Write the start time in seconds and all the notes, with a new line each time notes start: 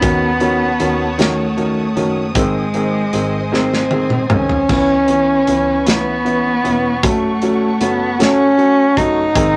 Already playing: B3 F#5
0.01 D#2 D#3 F#3 C#4 C#5 A5 D#6, kick, closed hi-hat
0.40 D#3 F#3 C#4, closed hi-hat
0.80 D#2 D#3 F#3 C#4, closed hi-hat
1.18 D#3 F#3 A3 C#4, snare, closed hi-hat
1.57 D#3 F#3 C#4, closed hi-hat
1.96 F#1 D#3 F#3 C#4, closed hi-hat
2.35 G#1 D#3 G#3 C4 C5 D#5 G#5, kick, closed hi-hat
2.74 D#3 G#3 C4, closed hi-hat
3.13 G#1 D#3 G#3 C4, closed hi-hat
3.52 D#3 G#3 C4, snare
3.74 snare
3.91 D#3 G#3 C4, high tom
4.10 mid tom
4.30 C2 D#3 G#3 C4 C#4, mid tom
4.49 floor tom
4.68 C#2 E3 B3 C#4 B4 E5 C#6, kick, splash
5.08 E3 B3 C#4, closed hi-hat
5.47 C#2 E3 B3 C#4, closed hi-hat
5.86 E3 B3 C#4, snare, closed hi-hat
6.25 E3 B3 C#4, closed hi-hat
6.64 E1 E3 B3 C#4, closed hi-hat
7.03 F#1 F#3 A3 C#4 A4 C#5 F#5, kick, closed hi-hat
7.42 F#3 A3 C#4, closed hi-hat
7.80 F#1 F#3 A3 B3 C#4, closed hi-hat
8.19 F#3 A3 C#4, snare, closed hi-hat
8.58 F#3 A3 C#4, closed hi-hat
8.96 F#1 F#3 A3 C#4 D#4, kick, closed hi-hat
9.34 G#1 D#3 G#3 C4 C5 D#5 G#5 D#6, kick, closed hi-hat